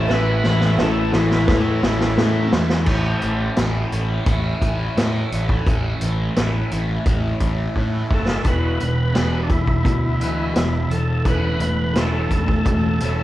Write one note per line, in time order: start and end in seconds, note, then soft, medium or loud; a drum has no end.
0.00 2.50 A2 medium
0.00 2.51 E3 loud
0.00 2.51 A3 medium
0.00 2.82 A3 medium
0.00 0.59 C#4 medium
0.00 2.83 C#4 medium
0.00 0.58 E4 medium
0.00 2.82 E4 medium
0.00 0.13 A4 medium
0.00 0.59 A4 medium
0.00 2.83 A4 medium
0.08 0.42 A1 medium
0.08 0.42 A2 medium
0.08 0.43 E3 medium
0.08 0.44 A3 loud
0.08 0.44 C#4 loud
0.08 0.44 E4 medium
0.08 0.75 B4 medium
0.08 snare medium
0.08 cowbell medium
0.43 0.77 A1 medium
0.43 0.77 A2 medium
0.43 0.77 E3 medium
0.43 0.78 A3 medium
0.43 0.78 C#4 medium
0.43 0.79 E4 medium
0.43 snare medium
0.61 snare medium
0.78 1.12 A1 medium
0.78 1.11 A2 medium
0.78 1.12 E3 medium
0.78 1.12 A3 medium
0.78 1.13 C#4 medium
0.78 1.35 C#4 medium
0.78 1.34 E4 medium
0.78 1.13 E4 medium
0.78 1.34 A4 medium
0.78 1.12 A4 medium
0.78 snare medium
0.78 cowbell medium
1.13 1.47 A1 medium
1.13 1.46 A2 medium
1.13 1.47 E3 medium
1.13 1.48 A3 medium
1.13 1.49 C#4 medium
1.13 1.49 E4 medium
1.13 2.49 E4 medium
1.13 snare medium
1.31 snare medium
1.48 1.82 A2 medium
1.48 1.81 A2 medium
1.48 1.82 E3 medium
1.48 1.83 A3 loud
1.48 2.04 C#4 medium
1.48 1.83 C#4 loud
1.48 2.04 E4 medium
1.48 1.83 E4 loud
1.48 2.05 A4 medium
1.48 kick loud
1.48 snare medium
1.48 cowbell medium
1.83 2.16 A1 medium
1.83 2.17 A2 medium
1.83 2.18 E3 medium
1.83 2.18 A3 medium
1.83 2.18 C#4 medium
1.83 2.19 E4 medium
1.83 snare loud
2.01 snare medium
2.17 2.51 A2 loud
2.17 2.52 A2 medium
2.17 2.53 E3 medium
2.17 2.53 A3 medium
2.17 2.73 C#4 medium
2.17 2.54 C#4 medium
2.17 2.73 E4 medium
2.17 2.54 E4 medium
2.17 2.73 A4 loud
2.17 snare loud
2.17 cowbell medium
2.52 2.86 E2 medium
2.52 2.86 A2 medium
2.52 2.86 E3 medium
2.52 2.86 A3 medium
2.52 2.86 C#4 medium
2.52 2.87 E4 medium
2.52 snare loud
2.70 snare loud
2.86 3.13 A1 medium
2.86 3.57 A2 medium
2.86 3.58 E3 medium
2.86 3.58 A3 medium
2.86 3.58 C#4 loud
2.86 3.59 E4 loud
2.86 kick medium
2.86 crash medium
3.21 3.49 A1 medium
3.21 closed hi-hat medium
3.56 3.83 A1 medium
3.56 3.91 A2 medium
3.56 3.92 E3 medium
3.56 3.93 A3 medium
3.56 3.93 C#4 medium
3.56 3.93 E4 medium
3.56 snare loud
3.56 closed hi-hat medium
3.92 4.18 A1 medium
3.92 4.25 A2 medium
3.92 4.27 E3 medium
3.92 4.26 A3 medium
3.92 4.27 C#4 medium
3.92 4.28 E4 medium
3.92 closed hi-hat medium
4.26 4.52 A1 medium
4.26 4.96 A2 medium
4.26 4.97 E3 medium
4.26 4.97 A3 loud
4.26 4.97 C#4 medium
4.26 4.98 E4 loud
4.26 kick loud
4.26 closed hi-hat medium
4.61 4.88 A1 medium
4.61 kick medium
4.61 closed hi-hat medium
4.97 5.31 A2 medium
4.97 5.23 A2 medium
4.97 5.33 E3 medium
4.97 5.32 A3 medium
4.97 5.33 C#4 medium
4.97 5.34 E4 medium
4.97 snare loud
4.97 closed hi-hat medium
5.32 5.58 A1 medium
5.32 5.66 A2 medium
5.32 5.67 E3 medium
5.32 5.67 A3 medium
5.32 5.68 C#4 medium
5.32 5.68 E4 medium
5.32 closed hi-hat medium
5.49 kick medium
5.67 5.93 A1 medium
5.67 6.35 A2 medium
5.67 6.35 E3 medium
5.67 6.36 A3 medium
5.67 6.37 C#4 loud
5.67 6.37 E4 loud
5.67 kick loud
5.67 closed hi-hat medium
6.01 6.28 A1 medium
6.01 closed hi-hat medium
6.36 6.63 A1 medium
6.36 6.69 A2 medium
6.36 6.71 E3 medium
6.36 6.71 A3 medium
6.36 6.71 C#4 medium
6.36 6.72 E4 medium
6.36 snare loud
6.36 closed hi-hat medium
6.71 6.98 A1 medium
6.71 7.04 A2 medium
6.71 7.05 E3 medium
6.71 7.05 A3 medium
6.71 7.06 C#4 medium
6.71 7.07 E4 medium
6.71 closed hi-hat medium
7.06 7.32 A1 medium
7.06 7.74 A2 medium
7.06 7.74 E3 loud
7.06 7.75 A3 medium
7.06 7.75 C#4 medium
7.06 7.76 E4 medium
7.06 kick loud
7.06 closed hi-hat medium
7.40 7.67 A1 medium
7.40 kick medium
7.40 closed hi-hat medium
7.75 8.08 A2 medium
7.75 8.02 A2 medium
7.75 8.09 E3 medium
7.75 8.09 A3 medium
7.75 8.09 C#4 medium
7.75 8.10 E4 medium
7.75 kick medium
8.09 8.37 F#1 medium
8.09 8.43 A2 medium
8.09 8.43 E3 medium
8.09 8.43 A3 medium
8.09 8.44 C#4 medium
8.09 8.44 E4 medium
8.09 kick medium
8.14 8.48 A4 medium
8.28 snare medium
8.44 8.77 E1 medium
8.44 8.78 E2 medium
8.44 8.78 B2 medium
8.44 8.78 E3 medium
8.44 9.01 B3 medium
8.44 9.01 E4 medium
8.44 9.01 G4 medium
8.44 9.41 B4 medium
8.44 kick loud
8.44 closed hi-hat medium
8.79 9.13 E1 medium
8.79 9.11 E2 medium
8.79 9.12 B2 medium
8.79 closed hi-hat soft
9.13 9.48 E1 medium
9.13 9.47 E2 medium
9.13 9.48 B2 medium
9.13 9.48 E3 medium
9.13 9.71 B3 medium
9.13 9.72 E4 medium
9.13 9.72 G4 medium
9.13 snare loud
9.13 closed hi-hat medium
9.43 9.50 D4 medium
9.48 9.82 E1 medium
9.48 9.81 E2 medium
9.48 9.81 B2 medium
9.48 10.54 E4 loud
9.48 kick medium
9.48 closed hi-hat medium
9.68 kick medium
9.83 10.51 D2 medium
9.83 10.16 E2 medium
9.83 10.16 B2 medium
9.83 10.41 B3 medium
9.83 10.41 E4 medium
9.83 10.42 F#4 medium
9.83 kick loud
9.83 closed hi-hat medium
10.20 10.53 E2 medium
10.20 10.54 B2 medium
10.20 10.54 E3 medium
10.20 closed hi-hat medium
10.52 10.88 E1 medium
10.52 10.87 E2 medium
10.52 10.88 B2 medium
10.52 11.10 B3 medium
10.52 11.10 E4 medium
10.52 10.92 E4 medium
10.52 11.10 G4 medium
10.52 snare loud
10.52 closed hi-hat medium
10.89 11.22 E1 medium
10.89 11.22 E2 medium
10.89 11.22 B2 medium
10.89 11.27 A4 medium
10.89 closed hi-hat medium
11.24 11.58 E1 medium
11.24 11.59 E3 medium
11.24 11.59 A3 medium
11.24 11.81 C#4 medium
11.24 11.60 C#4 medium
11.24 11.81 E4 medium
11.24 11.81 A4 medium
11.24 kick loud
11.24 closed hi-hat medium
11.28 11.99 B4 loud
11.60 11.92 E1 medium
11.60 11.93 E3 medium
11.60 11.93 A3 medium
11.60 closed hi-hat medium
11.93 12.28 E1 medium
11.93 12.29 E3 medium
11.93 12.51 C#4 medium
11.93 12.51 E4 medium
11.93 12.32 A4 medium
11.93 12.51 B4 medium
11.93 snare loud
11.93 closed hi-hat medium
11.97 12.30 A3 medium
11.97 12.30 C#4 medium
12.30 12.62 E1 medium
12.30 12.64 E3 medium
12.30 12.64 A3 medium
12.30 13.23 A4 loud
12.30 kick medium
12.30 closed hi-hat medium
12.48 kick medium
12.65 12.97 E1 medium
12.65 12.98 E3 medium
12.65 12.99 A3 medium
12.65 13.23 C#4 medium
12.65 13.23 E4 medium
12.65 13.23 F#4 medium
12.65 kick loud
12.65 closed hi-hat medium
13.00 13.23 E1 medium
13.00 13.23 E3 medium
13.00 13.23 A3 medium
13.00 13.23 C#4 medium
13.00 closed hi-hat medium